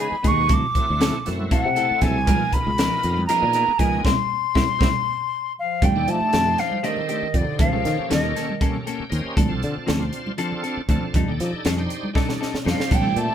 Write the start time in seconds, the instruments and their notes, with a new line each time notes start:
Already playing: tonewheel organ G#3 B3 D#4 G#4
0.00 clean electric guitar D#4 G#4, flute B5
0.12 muted fretless electric bass stroke
0.23 fretless electric bass D#2, tonewheel organ G#3 B3 D#4 F#4, clean electric guitar B3 D#4 G#4, kick, closed hi-hat
0.27 flute C#6
0.49 fretless electric bass D2, clean electric guitar F#3 C4 E4 A4, flute D6, kick, closed hi-hat, high conga
0.75 tonewheel organ A3 C4 E4 F#4, muted fretless electric bass stroke, kick, closed hi-hat, low conga
0.90 fretless electric bass D2
1.00 clean electric guitar F#3 C4 E4 A4, snare, closed hi-hat
1.25 fretless electric bass F#2, tonewheel organ A3 C4 E4 F#4, snare, closed hi-hat
1.39 high conga
1.51 clean electric guitar F#3 C4 E4 A4, flute F#5, kick, closed hi-hat
1.65 fretless electric bass C3
1.75 tonewheel organ A3 C4 E4 A4, clean electric guitar C4 E4 A4, closed hi-hat
1.91 muted fretless electric bass stroke
2.01 fretless electric bass C2, clean electric guitar F#3 C4 E4 A4, flute G#5, kick, snare, closed hi-hat
2.27 fretless electric bass C#2, clean electric guitar F3 B3 D#4 A#4, tonewheel organ A#3 B3 D#4 F4, kick, closed hi-hat, high conga
2.53 flute B5, muted fretless electric bass stroke, kick, closed hi-hat, low conga
2.67 fretless electric bass C#2, low conga
2.77 clean electric guitar F3 B3 D#4 A#4, tonewheel organ A#3 B3 D#4 F4, snare, closed hi-hat
3.03 fretless electric bass F2, closed hi-hat
3.17 high conga
3.26 clean electric guitar F3 B3 D#4, tonewheel organ A#3 B3 D#4 G#4, flute A#5, snare, closed hi-hat
3.30 clean electric guitar A#4
3.42 fretless electric bass A#2, low conga
3.53 clean electric guitar B3 D#4 A#4, closed hi-hat
3.68 muted fretless electric bass stroke
3.78 fretless electric bass C#2, clean electric guitar F3 B3 D#4 A#4, tonewheel organ A#3 B3 D#4 G#4, flute G#5, kick, closed hi-hat, low conga
4.04 fretless electric bass C2, clean electric guitar A#3 C4 E4, tonewheel organ C4 E4 G4, flute C6, kick, snare, high conga
4.54 fretless electric bass C2, clean electric guitar A#3 C4 E4, tonewheel organ C4 E4 G4, kick, snare, high conga
4.79 fretless electric bass C2, clean electric guitar A#3 C4 E4, tonewheel organ C4 E4 G4, kick, snare, high conga
5.59 bass clarinet F3, flute F5
5.82 fretless electric bass F2, clean electric guitar D#3 A3 D4 G4, flute G5, kick, closed hi-hat, high conga, low conga
5.86 bass clarinet G3
5.95 fretless electric bass D#2, tonewheel organ D4 D#4 G4 A4
6.08 fretless electric bass F3, bass clarinet A3, flute A5, closed hi-hat
6.20 muted fretless electric bass stroke, low conga
6.33 fretless electric bass F2, clean electric guitar D#3 A3 D4 G4, snare, closed hi-hat, low conga
6.46 tonewheel organ D4 D#4 G4 C5, low conga
6.58 bass clarinet F3, flute F5, snare, closed hi-hat
6.71 high conga
6.83 clean electric guitar D#3 A3 D4 G4, tonewheel organ C4 D#4 G4 A4, flute D#5, closed hi-hat, low conga
6.88 bass clarinet D#3
6.97 low conga
7.09 clean electric guitar A3 D4 G4, closed hi-hat
7.23 muted fretless electric bass stroke
7.34 fretless electric bass F2, bass clarinet D3, tonewheel organ D4 D#4 G4 C5, flute D5, kick, closed hi-hat
7.59 fretless electric bass D#2, bass clarinet F3, clean electric guitar G3 A#3 C#4 A4, flute F5, kick, closed hi-hat, high conga, low conga
7.72 fretless electric bass C#2, tonewheel organ A#3 C#4 G4 A4, low conga
7.85 fretless electric bass D#3, snare, closed hi-hat
7.99 muted fretless electric bass stroke, low conga
8.10 fretless electric bass D#2, bass clarinet D#3, clean electric guitar G3 A#3 C#4 A4, flute D#5, snare, closed hi-hat, low conga
8.22 tonewheel organ A#3 C#4 G4 A4
8.36 clean electric guitar A#3 C#4 A4, snare, closed hi-hat
8.49 high conga
8.61 clean electric guitar G3 A#3 C#4 A4, tonewheel organ A#3 C#4 G4 A4, kick, closed hi-hat, low conga
8.75 low conga
8.86 clean electric guitar A#3 C#4 A4, tonewheel organ G5, closed hi-hat
9.00 muted fretless electric bass stroke
9.09 fretless electric bass D#2, tonewheel organ A#3 C#4 G4 C5 D#5, closed hi-hat
9.25 muted fretless electric bass stroke
9.37 fretless electric bass D2, clean electric guitar F3 C4 D4 A4, kick, closed hi-hat, high conga, low conga
9.48 fretless electric bass C2, tonewheel organ C4 D4 F4 A4, low conga
9.63 fretless electric bass D3, closed hi-hat
9.77 muted fretless electric bass stroke, low conga
9.87 fretless electric bass D2, clean electric guitar F3 C4 D4 A4, snare, closed hi-hat, low conga
9.99 tonewheel organ C4 D4 F4 C5, low conga
10.13 closed hi-hat
10.27 high conga
10.38 clean electric guitar F3 C4 D4 A4, tonewheel organ C4 D4 F4 A4, closed hi-hat, low conga
10.52 low conga
10.63 clean electric guitar C4 D4 A4, closed hi-hat
10.77 muted fretless electric bass stroke
10.89 fretless electric bass D2, clean electric guitar F3 C4 D4 A4, tonewheel organ C4 D4 F4 A4, kick, closed hi-hat
11.03 muted fretless electric bass stroke
11.14 fretless electric bass F2, clean electric guitar G3 D4 D#4 A4, kick, closed hi-hat, high conga, low conga
11.28 fretless electric bass D#2, tonewheel organ D4 D#4 G4 A4
11.40 fretless electric bass F3, snare, closed hi-hat
11.53 muted fretless electric bass stroke
11.65 fretless electric bass F2, clean electric guitar G3 D4 D#4 A4, snare, closed hi-hat, low conga
11.77 tonewheel organ D4 D#4 G4 C5
11.90 closed hi-hat, low conga
12.03 high conga, low conga
12.13 clean electric guitar G3 D4 D#4 A4, tonewheel organ D4 D#4 G4 A4, kick, snare
12.28 snare, low conga
12.41 clean electric guitar D4 D#4 A4, snare
12.54 muted fretless electric bass stroke, snare
12.64 fretless electric bass F2, clean electric guitar G3 D4 D#4 A4, tonewheel organ D4 D#4 G4 C5, snare
12.70 bass clarinet F3, flute F5
12.79 muted fretless electric bass stroke, snare
12.91 fretless electric bass A#1, clean electric guitar G3 C4 D4 A4, flute G5, kick, closed hi-hat, crash, high conga, low conga
12.96 bass clarinet G3
13.02 fretless electric bass A1, tonewheel organ C4 D4 G4 A4
13.16 fretless electric bass A#2, bass clarinet A3, flute A5, closed hi-hat
13.29 muted fretless electric bass stroke, low conga